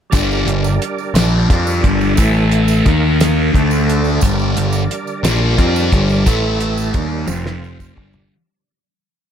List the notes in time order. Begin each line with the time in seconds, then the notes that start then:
0.10 G1 G2 D3 G3 D4 A#4 D5, kick, closed hi-hat, tambourine
0.14 G3
0.31 tambourine
0.46 G1 G2 D3, closed hi-hat
0.64 tambourine
0.82 closed hi-hat, tambourine
0.98 tambourine
1.14 A#1 A#2 F3 A#3, snare, closed hi-hat, tambourine
1.49 F2 F3 C4 F4, kick, closed hi-hat
1.67 tambourine
1.84 G1 G2 D3 G3, kick, closed hi-hat
2.01 tambourine
2.15 A1 A2 E3 A3 A4 E5, kick, closed hi-hat, tambourine
2.34 tambourine
2.51 closed hi-hat
2.68 tambourine
2.83 D#2 D#3 A#3 A#4 D#5, kick, closed hi-hat, tambourine
2.88 D#4
3.20 snare, closed hi-hat, tambourine
3.53 D2 D3 A3 D4 A4 D5, kick, closed hi-hat
3.71 tambourine
3.89 closed hi-hat
4.05 tambourine
4.21 G1 G2 D3 G3 D4 A#4, kick, closed hi-hat, tambourine
4.39 tambourine
4.55 G1 G2 D3, closed hi-hat
4.73 tambourine
4.91 closed hi-hat, tambourine
5.07 tambourine
5.23 A#1 A#2 F3 A#3, snare, closed hi-hat, tambourine
5.58 F2 F3 C4 F4, kick, closed hi-hat
5.76 tambourine
5.92 G1 G2 D3 G3, kick, closed hi-hat
6.09 tambourine
6.26 A1 A2 E3 A3 A4 E5, kick, closed hi-hat, tambourine
6.60 closed hi-hat
6.78 tambourine
6.93 D#2 D#3 G3 A#3 D#4 A#4 D5, kick, closed hi-hat
7.27 F1 F2 C3 F3 C4 C5 F5, high tom, tambourine
7.31 F3
7.46 snare
7.64 tambourine
7.80 kick, tambourine
7.93 G1 G3 D4 A#4 D5
7.97 G2 D3 G3, kick
8.13 floor tom, tambourine